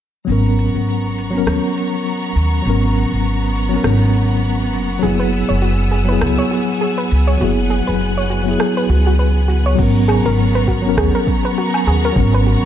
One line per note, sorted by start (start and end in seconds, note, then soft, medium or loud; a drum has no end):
0.25 0.68 G#1 medium
0.25 1.29 F#3 medium
0.25 1.30 B3 medium
0.29 9.75 B3 medium
0.29 1.31 C#4 medium
0.29 1.32 A#4 medium
0.29 9.75 F#5 medium
0.29 5.00 A#5 medium
0.29 5.00 C#6 medium
0.29 shaker soft
0.46 shaker soft
0.59 shaker medium
0.75 1.42 G#1 medium
0.75 shaker soft
0.88 shaker soft
1.18 shaker medium
1.30 2.61 F#3 medium
1.30 2.62 B3 medium
1.35 2.63 C#4 medium
1.35 2.64 A#4 medium
1.35 shaker soft
1.47 1.59 D#2 medium
1.47 cross-stick medium
1.47 shaker soft
1.77 shaker medium
1.94 shaker soft
2.07 shaker soft
2.24 shaker soft
2.36 2.59 D#2 medium
2.36 shaker medium
2.54 shaker soft
2.62 3.05 G#1 medium
2.62 3.66 F#3 medium
2.62 3.67 B3 medium
2.66 3.69 C#4 medium
2.66 3.70 A#4 medium
2.66 shaker soft
2.84 shaker soft
2.96 shaker medium
3.12 3.79 G#1 medium
3.12 shaker soft
3.26 shaker soft
3.55 shaker medium
3.69 4.98 F#3 medium
3.69 5.00 B3 medium
3.69 shaker soft
3.73 5.01 C#4 medium
3.73 5.02 A#4 medium
3.84 4.74 G#1 medium
3.84 cross-stick medium
3.84 shaker soft
4.02 shaker soft
4.14 shaker medium
4.31 shaker soft
4.43 shaker soft
4.61 shaker soft
4.73 4.97 F#1 medium
4.73 shaker medium
4.91 shaker soft
4.99 6.03 F#3 medium
4.99 6.05 B3 medium
4.99 5.18 G#4 medium
4.99 9.74 G#5 medium
4.99 7.38 E6 medium
4.99 shaker soft
5.03 5.43 F#1 medium
5.03 6.06 E4 medium
5.03 6.07 G#4 medium
5.19 5.32 B4 loud
5.19 shaker soft
5.33 shaker medium
5.49 6.17 F#1 medium
5.49 5.56 C#5 medium
5.49 shaker soft
5.62 5.78 F#4 medium
5.62 shaker soft
5.91 6.07 G#4 medium
5.91 shaker medium
6.05 7.36 F#3 medium
6.05 7.37 B3 medium
6.05 6.21 B4 loud
6.09 7.38 E4 medium
6.09 7.39 G#4 medium
6.09 shaker soft
6.21 6.35 C#2 medium
6.21 cross-stick medium
6.21 shaker soft
6.38 6.46 C#5 loud
6.51 6.67 F#4 medium
6.51 shaker medium
6.69 shaker soft
6.81 6.97 G#4 medium
6.81 shaker soft
6.98 7.10 B4 medium
6.98 shaker soft
7.11 7.35 C#2 medium
7.11 shaker medium
7.27 7.35 C#5 medium
7.27 shaker soft
7.37 7.81 F#1 medium
7.37 8.41 F#3 medium
7.37 8.42 B3 medium
7.37 7.56 F#4 medium
7.37 9.76 F#6 medium
7.41 8.44 E4 medium
7.41 8.45 G#4 medium
7.41 shaker soft
7.59 shaker soft
7.70 7.86 G#4 medium
7.70 shaker medium
7.87 8.55 F#1 medium
7.87 8.00 B4 loud
7.87 shaker soft
8.01 shaker soft
8.18 8.24 C#5 medium
8.30 8.46 F#4 medium
8.30 shaker medium
8.43 9.74 F#3 medium
8.43 9.75 B3 medium
8.48 9.76 E4 medium
8.48 9.77 G#4 medium
8.48 shaker soft
8.60 8.75 G#4 loud
8.60 cross-stick medium
8.60 shaker soft
8.77 8.89 B4 loud
8.77 shaker soft
8.89 9.73 C#2 medium
8.89 9.05 F#4 medium
8.89 shaker medium
9.07 9.19 F#4 medium
9.07 shaker soft
9.19 9.28 B4 medium
9.19 shaker soft
9.37 shaker soft
9.48 9.64 F#4 medium
9.48 shaker medium
9.66 9.77 C#5 loud
9.66 shaker soft
9.75 10.18 G#1 medium
9.75 10.79 F#3 medium
9.75 10.80 B3 medium
9.75 12.65 B3 medium
9.75 9.94 F#4 medium
9.75 12.65 F#5 medium
9.75 12.65 A#5 medium
9.75 12.65 C#6 medium
9.75 kick loud
9.75 crash medium
9.79 10.81 C#4 medium
9.79 10.83 A#4 medium
9.79 shaker soft
9.97 shaker soft
10.08 10.24 G#4 loud
10.08 low woodblock medium
10.08 shaker medium
10.25 10.92 G#1 medium
10.25 10.38 A#4 loud
10.25 shaker soft
10.39 shaker soft
10.55 10.62 B4 loud
10.68 10.83 F#4 medium
10.68 kick medium
10.68 shaker medium
10.82 12.12 F#3 medium
10.82 12.13 B3 medium
10.82 shaker soft
10.86 12.14 C#4 medium
10.86 12.15 A#4 medium
10.97 11.10 D#2 medium
10.97 11.13 G#4 loud
10.97 kick loud
10.97 cross-stick medium
10.97 shaker soft
11.15 11.27 A#4 loud
11.27 kick medium
11.27 shaker medium
11.45 11.51 B4 medium
11.45 shaker soft
11.57 11.73 F#4 medium
11.57 shaker soft
11.74 low woodblock medium
11.74 shaker soft
11.87 12.10 D#2 medium
11.87 12.02 G#4 medium
11.87 shaker medium
12.04 12.16 A#4 loud
12.04 shaker soft
12.13 12.56 G#1 medium
12.13 12.65 F#3 medium
12.13 12.65 B3 medium
12.13 kick loud
12.13 shaker soft
12.18 12.65 C#4 medium
12.18 12.65 A#4 medium
12.33 12.41 B4 loud
12.33 shaker soft
12.46 12.62 F#4 medium
12.46 shaker medium